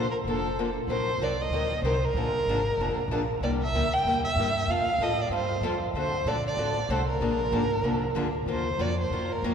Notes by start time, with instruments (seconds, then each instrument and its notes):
Already playing: upright bass A#1
0.11 violin A#4
0.24 upright bass F1, steel-string acoustic guitar D3 F3 A#3 D4, violin A4
0.29 steel-string acoustic guitar A4
0.59 steel-string acoustic guitar D3 F3 A#3 D4 A4
0.87 upright bass A#1, steel-string acoustic guitar D#3 F#3 C4 D#4 A#4, violin C5
1.18 upright bass C2, steel-string acoustic guitar D#3 F#3 A#4
1.22 steel-string acoustic guitar C4 D#4, violin D5
1.41 violin D#5
1.49 upright bass D2, steel-string acoustic guitar D#3 F#3
1.54 steel-string acoustic guitar C4 D#4 A#4
1.82 upright bass C2, steel-string acoustic guitar D#3 F#3 C4 D#4 A#4, violin C5
2.05 violin A#4
2.14 upright bass A#1, steel-string acoustic guitar D3 F3 A#3 D4 G#4
2.33 muted upright bass stroke
2.46 upright bass G#1, steel-string acoustic guitar D3 F3 A#3 D4 G#4
2.77 upright bass F1, steel-string acoustic guitar D3 F3 A#3 D4 G#4
2.96 muted upright bass stroke
3.08 upright bass A#1, steel-string acoustic guitar D3 F3 A#3 D4
3.12 steel-string acoustic guitar G#4
3.41 upright bass C2, steel-string acoustic guitar C3 G3 A#3 E4 G4, violin D5
3.63 violin E5
3.72 upright bass D2, steel-string acoustic guitar C3 G3 A#3 E4 G4
3.94 violin G5
4.04 upright bass E2, steel-string acoustic guitar C3 G3 A#3 E4 G4
4.25 violin E5
4.36 upright bass G2, steel-string acoustic guitar C3 G3 A#3 G4
4.40 steel-string acoustic guitar E4
4.67 upright bass F2, steel-string acoustic guitar F3 G3 C4 F4 A4, violin F5
4.87 muted upright bass stroke
4.98 upright bass A2, steel-string acoustic guitar F3 G3 C4 F4 A4
5.03 violin D#5
5.22 violin D5
5.29 upright bass G2, steel-string acoustic guitar F3 G3 C4 F4 A4
5.34 violin C5
5.61 upright bass F2, steel-string acoustic guitar F3 G3 C4 F4 A4
5.94 upright bass D2, steel-string acoustic guitar D3 A3 C4 F#4 A4, violin C5
6.25 upright bass A#1, steel-string acoustic guitar D3 A3 C4 F#4 A4, violin D5
6.47 violin D5
6.57 upright bass A1, steel-string acoustic guitar D3 A3 C4 F#4 A4
6.89 upright bass C2, steel-string acoustic guitar D3 A3 C4 F#4 A4, violin C5
7.10 violin A#4
7.20 upright bass A#1, steel-string acoustic guitar D3 F3 A#3 D4 G#4
7.52 upright bass G#1, steel-string acoustic guitar D3 F3 A#3 D4 G#4
7.83 upright bass C2, steel-string acoustic guitar D3 F3 A#3 D4 G#4
8.15 upright bass D2, steel-string acoustic guitar D3 F3 A#3 D4 G#4
8.46 upright bass D#2, steel-string acoustic guitar D#3 F#3 A#3 F4, violin C5
8.78 upright bass F2, steel-string acoustic guitar D#3 F#3 A#3 F4, violin D5
9.01 violin C5
9.10 upright bass F#2, steel-string acoustic guitar D#3 F#3 A#3 F4
9.33 violin A#4
9.42 upright bass F2, steel-string acoustic guitar D#3 F#3 A#3 F4